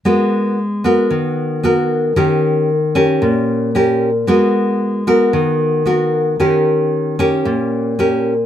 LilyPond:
\new Staff \with { instrumentName = "Nylon-string guitar" } { \time 4/4 \key gis \minor \tempo 4 = 113 << { <b fis' ais'>4 r8 <b fis' ais'>4. <b fis' ais'>4 | <cis' g' ais'>4 r8 <cis' g' ais'>4. <cis' g' ais'>8 r8 | <b fis' ais'>4. <b fis' ais'>4. <b fis' ais'>4 | <cis' g' ais'>4. <cis' g' ais'>4. <cis' g' ais'>8 r8 | } \\ { gis2 dis2 | dis2 ais,2 | gis2 dis2 | dis2 ais,2 | } >> }